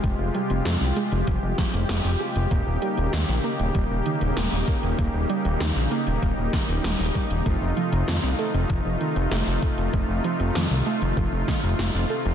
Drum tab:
HH |x-xxx-xxx-xxx-xx|x-xxx-xxx-xxx-xx|x-xxx-xxx-xxx-xx|x-xxx-xxx-xxx-xx|
SD |----o-----o-o---|----o-------o---|----o-----o-o---|----o-------o---|
BD |o-------o-o-----|o-------o-----o-|o-------o-o---o-|o-------o-----o-|

HH |x-xxx-xxx-xxx-xx|
SD |----o-----o-o---|
BD |o-------o-o-----|